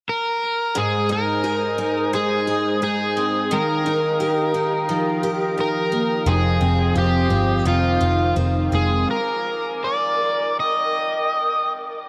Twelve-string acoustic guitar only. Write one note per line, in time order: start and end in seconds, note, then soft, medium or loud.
0.75 3.51 G#2 medium
1.09 1.78 D#4 soft
1.44 2.46 G#4 soft
1.78 2.82 D#4 medium
2.13 3.58 G#3 medium
2.47 3.58 G#4 medium
2.82 3.85 D#4 medium
3.17 3.58 C4 soft
3.51 6.29 D#3 medium
3.86 4.54 D#4 medium
4.20 5.22 G4 medium
4.54 5.57 D#4 medium
4.89 7.65 F3 medium
5.23 6.34 G4 medium
5.58 6.60 D#4 medium
5.92 6.34 A#3 soft
6.26 9.08 F2 medium
6.61 7.29 C4 soft
6.96 8.00 F4 medium
7.30 8.35 C4 medium
7.65 9.16 D#3 medium
8.01 9.16 F4 medium
8.36 9.16 C4 medium
8.72 9.16 G#3 soft